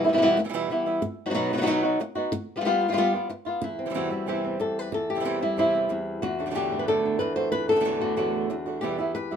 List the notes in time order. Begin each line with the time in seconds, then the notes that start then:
0.04 E3 G3 B3 E4
0.08 B2 B3 E4
0.13 B2 E3 G3 B3 E4
0.17 B2 E3 G3 B3 E4
0.22 E2 B2 E3 G3 B3 E4
0.37 muted nylon-string guitar stroke
0.44 B2 E3 G3 B3 E4
0.49 B2 E3 G3 B3 E4
0.53 E2 B2 E3 G3 B3 E4
0.70 E3 G3 B3 E4
0.86 E3 G3 B3 E4
1.03 muted nylon-string guitar stroke
1.26 F#3 B3 D#4 F#4
1.30 B2 F#3 B3 D#4 F#4
1.35 B2 F#3 B3 D#4 F#4
1.50 F#3 B3 D#4 F#4
1.54 F#3 B3 D#4 F#4
1.59 F#3 B3 D#4 F#4
1.63 B2 F#3 B3 D#4 F#4
1.67 B3 D#4 F#4
1.83 B3 D#4 F#4
2.00 muted nylon-string guitar stroke
2.15 B3 D#4 F#4
2.33 muted nylon-string guitar stroke
2.56 G3 B3 F4
2.61 G3 B3 F4
2.65 G3 B3 F4
2.81 B3 F4
2.88 G3 B3 F4
2.92 G3 B3 F4
2.97 G3 B3 F4
3.13 B3 F4
3.30 muted nylon-string guitar stroke
3.45 B3 F4
3.62 E2 E4, muted nylon-string guitar stroke
3.79 C4
3.86 C3 E3 G3 C4 E4
3.90 C3 E3 G3 C4 E4
3.94 E2 C3 E3 G3 C4 E4 F#4
4.10 E3 G3 C4 E4
4.26 E2 C3 E3 G3 C4 E4 G4
4.44 C4
4.59 E2 A4, muted nylon-string guitar stroke
4.79 B4
4.92 E2 A4, muted nylon-string guitar stroke
5.10 G4
5.15 C3 E3 G3 C4 E4
5.20 C3 E3 G3 C4 E4
5.24 E2 C3 E3 G3 C4 E4
5.41 E3 G3 C4 E4
5.57 E2 C3 E3 G3 C4 E4
5.75 C4
5.89 E2, muted nylon-string guitar stroke
6.22 E2 F#4, muted nylon-string guitar stroke
6.39 D3 A3 D4 F#4
6.46 A2 D3 A3 D4 F#4
6.50 A2 D3 A3 D4 F#4
6.55 E2 A2 D3 A3 D4 F#4 G4
6.71 D3 D4
6.79 B4
6.88 E2 A2 D3 A3 D4 F#4 A4
7.05 D4
7.19 E2 B4, muted nylon-string guitar stroke
7.36 D3 A3 D4 F#4 C5
7.52 E2 B4, muted nylon-string guitar stroke
7.68 A2 D3 A3 D4 F#4 A4
7.72 A2 D3 F#4
7.76 A3 D4 F#4
7.80 A2 D3 A3 D4 F#4
7.85 E2 A2 D3 A3 D4 F#4
8.01 D3 F#4
8.16 E2 A2 D3 A3 D4 F#4
8.50 E2, muted nylon-string guitar stroke
8.66 D3 A3 D4 F#4
8.81 E2 B2 E3 G3 B3 E4 G4
8.98 E3 G3 B3 E4
9.15 B4, muted nylon-string guitar stroke
9.31 E3 G3 B3 E4